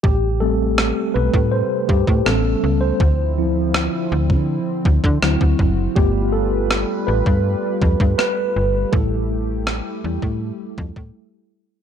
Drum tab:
SD |----r-------r---|----r-------r---|----r-------r---|----r-----------|
BD |o------o--oo----|o------o--oo-oo-|o------o--oo----|o------o--oo----|